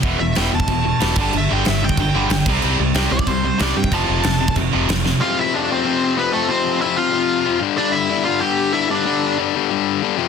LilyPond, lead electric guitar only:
\new Staff \with { instrumentName = "Lead electric guitar" } { \time 4/4 \key g \mixolydian \tempo 4 = 186 r8 e''8 g''8 a''2 a''8 | e''8 g''8 e''8 g''2 r8 | r4. d''8 c''4 d''8 g''8 | a''2 r2 |
<f' f''>8 <e' e''>8 <d' d''>8 <c' c''>4. <b b'>8 <a a'>8 | <c' c''>4 <e' e''>8 <f' f''>2 r8 | <d' d''>8 <e' e''>4 <f' f''>8 <g' g''>4 <e' e''>8 <d' d''>8~ | <d' d''>4 r2. | }